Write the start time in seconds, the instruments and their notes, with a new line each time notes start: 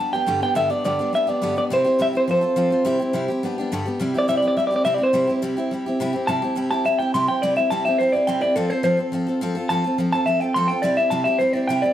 Already playing: steel-string acoustic guitar G3, clean electric guitar A5
0.00 steel-string acoustic guitar B3 D4 G4
0.13 steel-string acoustic guitar G3 B3 D4 G4, clean electric guitar G5
0.27 steel-string acoustic guitar G2 D3 G3 B3 D4 G4
0.41 steel-string acoustic guitar G3 B3 D4 G4, clean electric guitar G5
0.55 steel-string acoustic guitar G2 D3 G3 B3 D4 G4, clean electric guitar E5
0.70 steel-string acoustic guitar G3 B3 D4 G4, clean electric guitar D5
0.84 steel-string acoustic guitar G2 D3 G3 B3 D4 G4, clean electric guitar D5
0.99 steel-string acoustic guitar G3 B3 D4 G4
1.13 steel-string acoustic guitar G3 B3 D4 G4, clean electric guitar E5
1.27 steel-string acoustic guitar G3 B3 D4 G4, clean electric guitar D5
1.42 steel-string acoustic guitar G2 D3 G3 B3 D4 G4
1.56 steel-string acoustic guitar G3 B3 D4 G4, clean electric guitar D5
1.70 steel-string acoustic guitar C3 G3 C4 E4 G4, clean electric guitar C5
1.84 steel-string acoustic guitar C4 E4 G4
1.99 steel-string acoustic guitar C3 G3 C4 E4 G4, clean electric guitar E5
2.13 steel-string acoustic guitar C4 E4 G4
2.17 clean electric guitar C5
2.28 steel-string acoustic guitar F3 C4 F4 A4, clean electric guitar C5
2.41 steel-string acoustic guitar C4 F4 A4
2.56 steel-string acoustic guitar F3 C4 F4 A4
2.70 steel-string acoustic guitar C4 F4 A4
2.85 steel-string acoustic guitar C3 G3 C4 E4 G4
2.99 steel-string acoustic guitar C4 E4 G4
3.13 steel-string acoustic guitar C3 G3 C4 E4 G4
3.28 steel-string acoustic guitar C4 E4 G4
3.43 steel-string acoustic guitar G3 B3 D4 G4
3.58 steel-string acoustic guitar G3 B3 D4 G4
3.72 steel-string acoustic guitar G2 D3 G3 B3 D4 G4
3.86 steel-string acoustic guitar G3 B3 D4 G4
4.00 steel-string acoustic guitar C3 G3 C4 E4 G4
4.14 steel-string acoustic guitar C4 E4 G4
4.19 clean electric guitar D5
4.28 steel-string acoustic guitar C3 G3 C4 E4 G4, clean electric guitar E5
4.37 clean electric guitar D5
4.42 steel-string acoustic guitar C4 E4 G4
4.48 clean electric guitar D5
4.57 steel-string acoustic guitar G3 C4 E4 G4, clean electric guitar E5
4.67 steel-string acoustic guitar G4, clean electric guitar D5
4.72 steel-string acoustic guitar C4 E4, clean electric guitar D5
4.85 steel-string acoustic guitar C3 G3 C4 E4 G4, clean electric guitar E5
4.94 steel-string acoustic guitar G4, clean electric guitar D5
5.00 steel-string acoustic guitar C4 E4, clean electric guitar C5
5.13 steel-string acoustic guitar C3 G3 C4 E4 G4
5.27 steel-string acoustic guitar C4 E4 G4
5.42 steel-string acoustic guitar C3 G3 C4 E4 G4
5.57 steel-string acoustic guitar C4 E4 G4
5.71 steel-string acoustic guitar G3 C4 E4 G4
5.86 steel-string acoustic guitar C4 E4 G4
6.00 steel-string acoustic guitar C3 G3 C4 E4 G4
6.13 steel-string acoustic guitar C4 E4 G4
6.27 steel-string acoustic guitar C3 G3 C4 E4 G4, clean electric guitar A5
6.42 steel-string acoustic guitar C4 E4 G4
6.55 steel-string acoustic guitar C3 G3 C4 E4 G4
6.71 steel-string acoustic guitar C4 E4 G4, clean electric guitar A5
6.85 steel-string acoustic guitar G3 C4 E4 G4, clean electric guitar E5
6.99 steel-string acoustic guitar C4 E4 G4, clean electric guitar G5
7.14 steel-string acoustic guitar C3 G3 C4 E4 G4, clean electric guitar C6
7.27 steel-string acoustic guitar C4 E4 G4, clean electric guitar G5
7.42 steel-string acoustic guitar C3 G3 C4 E4 G4, clean electric guitar D5
7.56 steel-string acoustic guitar C4 E4 G4, clean electric guitar E5
7.70 steel-string acoustic guitar C3 G3 C4 E4 G4, clean electric guitar A5
7.85 steel-string acoustic guitar C4 E4 G4, clean electric guitar E5
7.98 steel-string acoustic guitar G3 C4 E4, clean electric guitar C5
8.03 steel-string acoustic guitar G4
8.12 steel-string acoustic guitar E4 G4, clean electric guitar D5
8.16 steel-string acoustic guitar C4
8.27 steel-string acoustic guitar C3 G3 C4 E4 G4, clean electric guitar G5
8.41 steel-string acoustic guitar C4 E4 G4, clean electric guitar D5
8.56 steel-string acoustic guitar F3 C4 F4 A4, clean electric guitar A4
8.70 steel-string acoustic guitar C4 F4 A4, clean electric guitar C5
8.83 steel-string acoustic guitar F3 C4 F4 A4, clean electric guitar C5
8.97 steel-string acoustic guitar C4 F4 A4
9.12 steel-string acoustic guitar F3 C4 F4 A4
9.27 steel-string acoustic guitar C4 F4 A4
9.41 steel-string acoustic guitar F3 C4 F4 A4
9.55 steel-string acoustic guitar C4 F4 A4
9.69 steel-string acoustic guitar F3 C4 F4 A4, clean electric guitar A5
9.84 steel-string acoustic guitar C4 F4 A4
9.98 steel-string acoustic guitar F3 C4 F4 A4
10.12 steel-string acoustic guitar C4 F4 A4, clean electric guitar A5
10.26 steel-string acoustic guitar F3 C4 F4 A4, clean electric guitar E5
10.40 steel-string acoustic guitar C4 F4 A4, clean electric guitar G5
10.54 steel-string acoustic guitar F3 C4 F4 A4, clean electric guitar C6
10.68 steel-string acoustic guitar F4 A4, clean electric guitar G5
10.72 steel-string acoustic guitar C4
10.82 steel-string acoustic guitar C3 G3 C4 E4 G4, clean electric guitar D5
10.97 steel-string acoustic guitar C4 E4 G4, clean electric guitar E5
11.10 steel-string acoustic guitar C3 G3 C4 E4 G4, clean electric guitar A5
11.24 steel-string acoustic guitar C4 E4 G4, clean electric guitar E5
11.39 steel-string acoustic guitar G3 C4 E4 G4, clean electric guitar C5
11.53 steel-string acoustic guitar C4 E4 G4, clean electric guitar D5
11.67 steel-string acoustic guitar C3 G3 C4 E4 G4, clean electric guitar G5
11.82 steel-string acoustic guitar C4 E4 G4, clean electric guitar D5